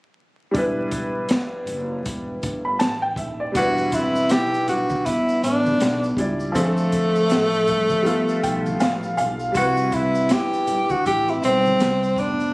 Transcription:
0.51 E1 G3 D4, kick, closed hi-hat
0.56 E4 B4
0.91 kick, closed hi-hat
1.29 G1, snare, closed hi-hat
1.67 F#1, closed hi-hat
2.06 E1, kick, closed hi-hat
2.43 G1, kick, closed hi-hat
2.65 B5
2.79 A1 A5, snare, closed hi-hat
3.02 G5
3.16 D#1 E5, kick, closed hi-hat
3.40 D5
3.52 E1 G3 D4, kick, closed hi-hat, shaker
3.56 E4 F#4 B4
3.77 shaker
3.92 C4 E4, kick, closed hi-hat, shaker
4.15 shaker
4.29 B1 E4 G4, snare, closed hi-hat, shaker
4.54 shaker
4.67 D4 F#4, closed hi-hat, low conga, shaker
4.90 kick, high conga, shaker
5.05 G1 B3 E4, kick, closed hi-hat, shaker
5.29 shaker
5.42 A1 B3 D4, closed hi-hat, shaker
5.66 high conga, shaker
5.80 B1, snare, closed hi-hat, shaker
6.03 shaker
6.17 C#2 G3 D4 E4 D5, kick, closed hi-hat, low conga, shaker
6.40 shaker
6.52 D2 F3 A3 C4, kick, closed hi-hat, shaker
6.56 D4 G#4
6.65 A4
6.77 shaker
6.92 kick, closed hi-hat, shaker
7.16 shaker
7.30 A1, snare, closed hi-hat, shaker
7.54 shaker
7.67 kick, closed hi-hat, low conga, shaker
7.89 kick, high conga, shaker
8.02 G1 G3 B3, shaker
8.06 F4 A4, closed hi-hat
8.29 shaker
8.43 B1 G5, kick, closed hi-hat, shaker
8.66 high conga, shaker
8.80 A1 F5, snare, closed hi-hat, shaker
9.03 shaker
9.17 B1 F5, closed hi-hat, low conga, shaker
9.39 shaker
9.52 C2 G3 C4, kick, closed hi-hat, shaker
9.56 E4 F#4 B4
9.77 shaker
9.92 C4 E4, kick, closed hi-hat, shaker
10.15 shaker
10.29 G1 E4 G4, snare, closed hi-hat, shaker
10.53 shaker
10.67 closed hi-hat, low conga, shaker
10.89 D4 F#4, kick, high conga, shaker
11.05 A1 E4 G4, kick, closed hi-hat, shaker
11.28 C4 E4, shaker
11.43 B1 G3 C4, closed hi-hat, shaker
11.66 high conga, shaker
11.80 C2, snare, closed hi-hat, shaker
12.03 shaker
12.16 F1 B3 D4, kick, closed hi-hat, low conga, shaker
12.40 shaker

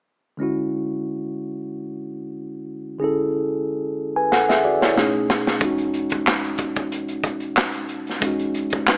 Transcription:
0.37 D3 G#3 C#4
0.41 E4 F#4
2.99 D3 C#4 G#4
3.03 E4 A4
4.16 B4 G#5
4.32 A4 F#5, snare
4.49 G#4 E5, snare
4.65 F#4 D5
4.82 E4 C#5, snare
4.96 B2 A3 C#4 D#4 G#4, snare
5.30 snare
5.47 snare
5.59 E1 G#3 C#4 D#4, kick, closed hi-hat
5.65 F#4
5.78 closed hi-hat
5.94 closed hi-hat
6.10 kick, closed hi-hat
6.27 snare, clap
6.44 closed hi-hat
6.58 kick, closed hi-hat
6.76 kick, closed hi-hat
6.92 closed hi-hat
7.08 closed hi-hat
7.24 kick, closed hi-hat
7.40 closed hi-hat
7.57 snare, clap
7.74 closed hi-hat
7.89 closed hi-hat
8.07 snare, closed hi-hat
8.20 E1 G#3 C#4 D#4, kick, closed hi-hat
8.26 F#4
8.39 closed hi-hat
8.54 closed hi-hat
8.70 kick, closed hi-hat
8.88 D#4 B4, snare, clap

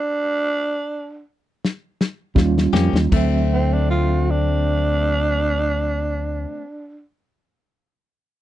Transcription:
Already playing: D4
1.65 snare
2.01 snare
2.35 D#2 G3 C#4 F4, kick, snare
2.58 snare
2.73 F2 F3 A#3 C#4 G4, snare
2.93 D#2, snare
3.09 D2 F#3 A3 C4 E5, kick, crash
3.16 C4
3.53 C4
3.73 D4
3.91 F4
4.31 D4

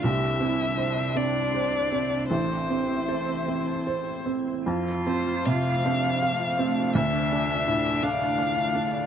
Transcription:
Already playing: D4 D5
0.04 C2 C4 D4 G4 C5 E5
0.41 C4 E4
0.60 G4
0.78 C4 D4 C5
0.96 G4
1.15 C4 E4 D5
1.33 C5
1.52 C4 C5
1.90 C4 E4
2.10 E4
2.29 A1 C4 E4 A4 C5
2.70 C4
2.88 E5
3.08 A4 C5
3.27 E5
3.47 C4 C5
3.67 A5
3.87 A4 C5
4.26 C4 C5
4.47 C5
4.65 F2 A3 F4 C5
5.07 C4 C5
5.27 F4
5.46 C3 C5 F5
5.84 C4 D4 F4
6.04 C5
6.22 C4 F5
6.40 F4
6.57 C4 D4 C5
6.94 D2 D4 D5 E5
7.13 D5
7.31 D4 D5
7.49 D4
7.66 A2 A4
7.84 D5
8.03 D4 F5
8.21 A4
8.39 F5
8.56 D4
8.74 D4 A4
8.91 D5

